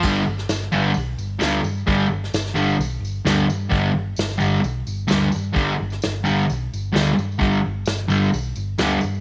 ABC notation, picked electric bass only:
X:1
M:4/4
L:1/8
Q:1/4=130
K:G
V:1 name="Picked electric bass" clef=bass
G,,, G,,, G,,, G,,, B,,, G,,, D,, G,, | G,,, G,,, G,,, G,,, B,,, G,,, D,, G,, | G,,, G,,, G,,, G,,, B,,, G,,, D,, G,, | G,,, G,,, G,,, G,,, B,,, G,,, D,, G,, |
G,,, G,,, G,,, G,,, B,,, G,,, D,, G,, |]